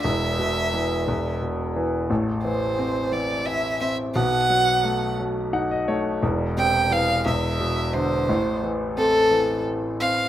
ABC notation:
X:1
M:6/8
L:1/16
Q:3/8=58
K:Am
V:1 name="Violin"
e8 z4 | z2 c4 d2 e2 e2 | ^f6 z6 | z2 g2 f2 e4 c2- |
c2 z2 A4 z2 f2 |]
V:2 name="Grand piano"
z12 | z12 | z8 ^f ^d ^c2 | z12 |
z12 |]
V:3 name="Grand piano" clef=bass
[E,,,E,,]2 B,,2 E,2 [E,,,E,,]2 B,,2 E,2 | [A,,,A,,]2 E,2 C2 E,2 E2 C2 | [B,,,B,,]2 ^F,2 A,2 F,2 ^D2 A,2 | [E,,,E,,]2 C,2 E,2 [E,,,E,,]2 B,,2 D,2 |
[A,,,A,,]2 E,2 C2 E,4 C2 |]